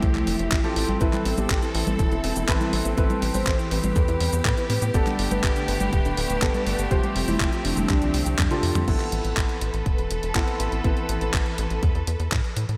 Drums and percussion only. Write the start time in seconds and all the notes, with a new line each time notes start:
0.02 kick, closed hi-hat
0.15 clap, closed hi-hat
0.27 open hi-hat
0.39 closed hi-hat
0.52 kick, clap, closed hi-hat
0.64 closed hi-hat
0.76 open hi-hat
0.89 closed hi-hat, high conga
1.01 kick, closed hi-hat, cabasa
1.13 clap, closed hi-hat, high conga, cabasa
1.25 open hi-hat
1.38 closed hi-hat, high conga, cabasa
1.50 kick, clap, closed hi-hat, cabasa
1.62 closed hi-hat, cabasa
1.75 open hi-hat
1.87 closed hi-hat, high conga, cabasa
1.99 kick, closed hi-hat, cabasa
2.12 closed hi-hat, cabasa
2.24 open hi-hat
2.36 closed hi-hat, cabasa
2.48 kick, clap, closed hi-hat, cabasa
2.61 closed hi-hat, high conga, cabasa
2.73 open hi-hat
2.85 closed hi-hat, cabasa
2.98 kick, closed hi-hat, cabasa
3.10 closed hi-hat, high conga, cabasa
3.22 open hi-hat
3.35 open hi-hat, high conga, cabasa
3.47 kick, clap, cabasa
3.59 closed hi-hat, cabasa
3.71 open hi-hat
3.84 closed hi-hat, high conga, cabasa
3.96 kick, closed hi-hat, cabasa
4.08 closed hi-hat, cabasa
4.20 open hi-hat
4.33 closed hi-hat, cabasa
4.45 kick, clap, closed hi-hat, cabasa
4.57 closed hi-hat, cabasa
4.70 open hi-hat
4.82 closed hi-hat, cabasa
4.94 kick, closed hi-hat, cabasa
5.07 clap, closed hi-hat, high conga, cabasa
5.19 open hi-hat
5.31 closed hi-hat, high conga, cabasa
5.43 kick, clap, closed hi-hat, cabasa
5.56 closed hi-hat, cabasa
5.68 open hi-hat
5.81 closed hi-hat, high conga, cabasa
5.93 kick, closed hi-hat, cabasa
6.05 closed hi-hat, cabasa
6.17 open hi-hat
6.30 closed hi-hat, cabasa
6.42 kick, clap, closed hi-hat, cabasa
6.54 closed hi-hat, high conga, cabasa
6.67 open hi-hat
6.79 closed hi-hat, cabasa
6.91 kick, closed hi-hat, cabasa
7.03 closed hi-hat, high conga, cabasa
7.16 open hi-hat
7.28 open hi-hat, high conga, cabasa
7.40 kick, clap, closed hi-hat, cabasa
7.53 closed hi-hat, cabasa
7.65 open hi-hat
7.77 closed hi-hat, high conga, cabasa
7.89 kick, clap, closed hi-hat, cabasa
8.02 closed hi-hat, cabasa
8.14 open hi-hat
8.26 closed hi-hat, cabasa
8.39 kick, clap, closed hi-hat, high tom, cabasa
8.51 closed hi-hat, high tom, cabasa
8.63 open hi-hat
8.75 closed hi-hat, mid tom, high conga, cabasa
8.88 kick, closed hi-hat, crash
9.00 clap, closed hi-hat
9.12 closed hi-hat
9.25 closed hi-hat
9.37 kick, clap, closed hi-hat
9.49 closed hi-hat
9.61 closed hi-hat
9.74 closed hi-hat
9.86 kick, closed hi-hat
9.98 closed hi-hat
10.11 closed hi-hat
10.23 closed hi-hat
10.35 kick, clap, closed hi-hat
10.48 closed hi-hat
10.60 closed hi-hat
10.72 closed hi-hat
10.84 kick, closed hi-hat
10.97 closed hi-hat
11.09 closed hi-hat
11.21 closed hi-hat
11.34 kick, clap, closed hi-hat
11.46 closed hi-hat
11.58 closed hi-hat
11.70 closed hi-hat
11.83 kick, closed hi-hat
11.95 closed hi-hat
12.07 closed hi-hat
12.20 closed hi-hat
12.32 kick, clap, closed hi-hat
12.44 closed hi-hat
12.57 closed hi-hat
12.69 closed hi-hat